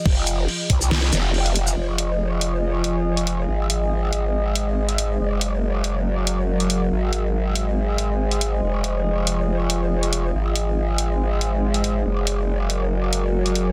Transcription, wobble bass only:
X:1
M:4/4
L:1/8
Q:"Swing 16ths" 1/4=140
K:Fphr
V:1 name="Wobble bass" clef=bass
F,,,2 z C,,2 F,,,3 | F,,,8 | A,,,8 | G,,,8 |
A,,,8 | F,,,8 | A,,,8 | G,,,8 |]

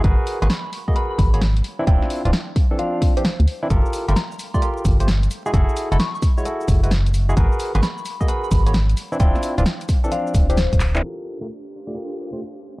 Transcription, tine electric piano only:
X:1
M:4/4
L:1/16
Q:"Swing 16ths" 1/4=131
K:Dm
V:1 name="Tine electric piano"
[_G_AB_c]3 [B,GAc] z3 [B,GA_e] [GABc]3 [B,GA^c] z3 [=E,=CDE] | [CDEF]3 [E,CDF] z3 [E,CDA] [F,CDF]3 [E,CDG] z3 [E,CDE] | [FGAB]3 [A,FGB] z3 [A,FGd] [FGAB]3 [A,FGc] z3 [^G,E^F^G] | [E^F^GA]3 [^G,EFA] z3 [G,EF^c] [EFGA]3 [G,EF=B] z3 [G,EFG] |
[_G_AB_c]3 [B,GAc] z3 [B,GA_e] [GABc]3 [B,GA^c] z3 [=E,=CDE] | [CDEF]3 [E,CDF] z3 [E,CDA] [F,CDF]3 [E,CDG] z3 [E,CDE] | [GA]3 [A,FGB] z3 [A,FGd] [FGAB]3 [A,FGc] z4 |]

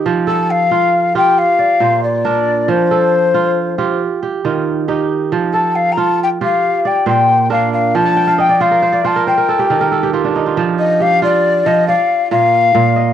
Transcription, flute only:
X:1
M:12/8
L:1/16
Q:3/8=91
K:Fmix
V:1 name="Flute"
z2 a2 f6 g2 f6 d6 | c12 z12 | z2 a2 f3/2 b/2 a2 g2 f4 g2 g4 f2 f2 | a4 g2 f4 a2 g8 z4 |
z2 e2 f2 d4 e2 f4 f8 |]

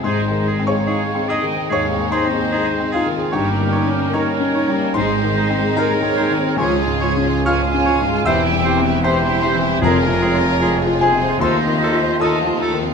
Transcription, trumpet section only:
X:1
M:4/4
L:1/16
Q:1/4=74
K:Fm
V:1 name="Trumpet section"
c3 d3 e2 d2 c4 F2 | G4 B4 c4 B4 | A4 f4 =e4 c4 | B6 A2 c4 e2 z2 |]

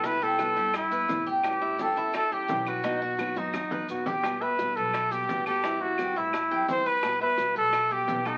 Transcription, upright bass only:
X:1
M:4/4
L:1/8
Q:1/4=172
K:Bm
V:1 name="Upright bass" clef=bass
=C,,3 G,,3 A,,2- | A,,3 E,,3 B,,,2- | B,,,3 F,,3 E,,2- | [K:Em] E,,3 B,,,3 z2 |
z3 A,,2 F,, E,,2- | E,,3 B,,,3 B,,,2 |]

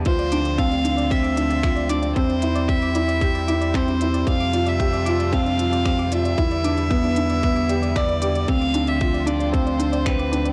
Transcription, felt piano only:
X:1
M:4/4
L:1/8
Q:1/4=114
K:Ddor
V:1 name="Felt piano"
F D C D C D F D | C E C E G E C E | C F G F C F C F | E D B, D B, G d G |
C D F D C D C D |]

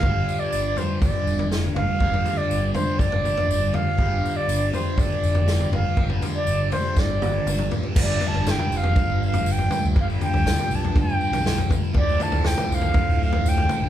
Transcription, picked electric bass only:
X:1
M:4/4
L:1/16
Q:1/4=121
K:Gmix
V:1 name="Picked electric bass" clef=bass
G,,,2 z2 G,,,2 z2 G,,, z F,,,4 G,,, z | G,,,2 z2 G,,,2 z2 G,,,4 G,,,2 z2 | G,,,2 z2 G,,,2 z2 G,,, z F,,,4 G,,, z | G,,,2 z2 G,,,2 z2 G,,,4 G,,,2 z2 |
G,,,2 z G,,,2 z F,,,2 z G,,,3 G,,,2 z D,, | G,,,2 z D,,2 z B,,,2 z G,, z B,,,3 A,,, z | D,,,2 z D,,,2 z C,,2 z D,,,3 D,,,2 z A,,, |]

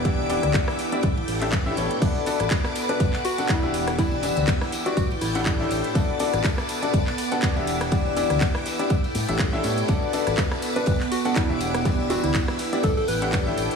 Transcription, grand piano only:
X:1
M:4/4
L:1/16
Q:"Swing 16ths" 1/4=122
K:Bm
V:1 name="Grand piano"
[E,B,DEGd]2 [E,B,DEGd]4- [E,B,DEGd] [B,DEGd] z3 [A,,A,DEGe] z [A,,A,DEGe] [B,,A,DEGc]2 | [B,,B,DFAd]2 [B,,B,DFAd]4- [B,,B,DFAd] [B,,B,DFAd] z3 [B,,B,DFAf] [E,B,A] [E,B,DEGe]3 | [E,B,DEGd]2 [E,B,DEGd]4- [E,B,DEGd] [B,DEGd] z3 [A,,A,DEGf] [A,,A,DEd] [A,,A,DEGe]3 | [B,,B,DFAd]2 [B,,B,DFAd]4- [B,,B,DFAd] [B,,B,DFAd] z3 [B,,B,DFAf] [E,DFAd] [E,B,DEGe]3 |
[E,B,DEGd]2 [E,B,DEGd]4- [E,B,DEGd] [B,DEGd] z3 [A,,A,DEGe] z [A,,A,DEGe] [B,,A,DEGc]2 | [B,,B,DFAd]2 [B,,B,DFAd]4- [B,,B,DFAd] [B,,B,DFAd] z3 [B,,B,DFAf] [E,B,DFd] [E,B,DEGe]3 | [E,B,DEGd]2 [E,B,DEGd]4- [E,B,DEGd] [B,DEGd] z3 [A,,A,DEGf] [A,,A,DEGd] [A,,A,DEGe]3 |]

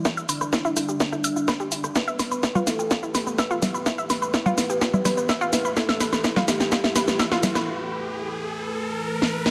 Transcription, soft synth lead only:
X:1
M:4/4
L:1/8
Q:1/4=126
K:G
V:1 name="Soft synth lead"
E D6- D | B3 A3 B2- | B B6- B | A3 G3 E2 |
z8 |]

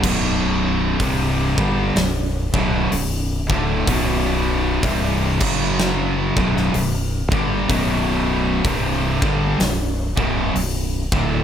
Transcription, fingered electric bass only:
X:1
M:4/4
L:1/8
Q:"Swing" 1/4=63
K:Bm
V:1 name="Fingered electric bass" clef=bass
B,,,,2 =C,,, G,,, B,,,, B,,,, B,,,, D,,, | B,,,,2 =C,,, F,,,2 B,,,, B,,,, G,,, | B,,,,2 =C,,, G,,, B,,,, B,,,, B,,,, D,,, |]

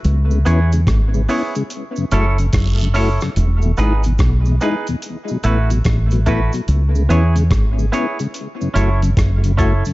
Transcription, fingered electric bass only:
X:1
M:4/4
L:1/16
Q:"Swing 16ths" 1/4=72
K:F#dor
V:1 name="Fingered electric bass" clef=bass
C,,2 E,,2 G,,,2 z4 F,,,2 F,,,3 z | E,,,2 G,,,2 B,,,2 z4 A,,,2 A,,,3 z | C,,2 E,,2 G,,,2 z4 F,,,2 F,,,3 z |]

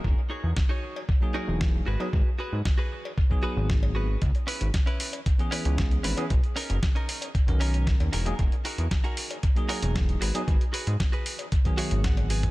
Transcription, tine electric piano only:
X:1
M:4/4
L:1/16
Q:1/4=115
K:G#m
V:1 name="Tine electric piano"
z8 z [F,A,DG]4- [F,A,DG] z [F,B,DG] | z8 z [F,B,DG]6 z | z8 z [E,B,CG]6 [E,B,CG] | z8 z [D,B,CA]4- [D,B,CA] z [F,A,DG] |
z8 z [F,A,DG]4- [F,A,DG] z [F,B,DG] | z8 z [D,F,B,G]6 z |]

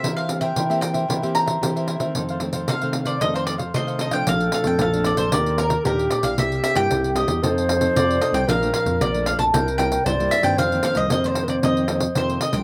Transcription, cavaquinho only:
X:1
M:4/4
L:1/16
Q:1/4=114
K:Bb
V:1 name="Cavaquinho"
[=EBc=e] [Bce] z [Bce] [EBce] [Bce] z [Bce] [EBce] [Bce]2 [Bce]2 [Bce] [EBce] [Bce] | [EAcf] [Acf] z [Acf] [EAcf] [Acf] z [Acf] [EAcf] [Acf]2 [Acf]2 [Acf] [EAcf] [Acf] | z16 | z16 |
z16 | z16 |]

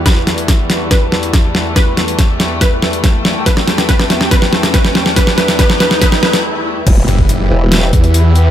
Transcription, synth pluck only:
X:1
M:4/4
L:1/8
Q:1/4=141
K:Em
V:1 name="Synth pluck"
B3 z B3 z | B3 z B3 z | B2 B2 B2 B2 | B B B B B B z2 |
z8 |]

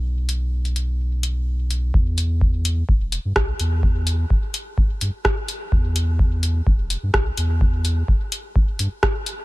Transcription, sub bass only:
X:1
M:4/4
L:1/16
Q:"Swing 16ths" 1/4=127
K:Bphr
V:1 name="Sub bass" clef=bass
B,,,16 | E,,8 E,,,3 G,, B,,, z E,,2- | E,,4 E,,, z4 z G,, z4 z | E,,8 E,,,3 G,, B,,, z E,,2- |
E,,4 E,,, z4 z G,, z4 z |]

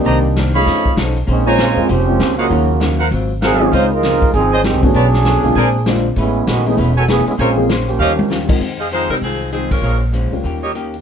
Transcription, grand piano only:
X:1
M:4/4
L:1/8
Q:"Swing" 1/4=196
K:Bbdor
V:1 name="Grand piano"
[E,B,CG=d]2 z [F,=A,_DE_A]3 z2 | z [A,B,CDF] z [A,B,CDF] z [A,B,CDF] z2 | [_G,B,DEF] z6 [E,A,CDF] | z6 z [=D,=A,_C_D_G] |
z3 [=D,A,B,CF] z2 [D,A,B,CF] z | z3 [=E,=A,=B,^C^G] z2 [E,A,B,CG] z | z [F,B,CDA] z4 z [F,A,CEB] | [K:Fm] z3 [A,CEG] z2 [A,CEA] z |
z3 [G,B,DF]3 z2 |]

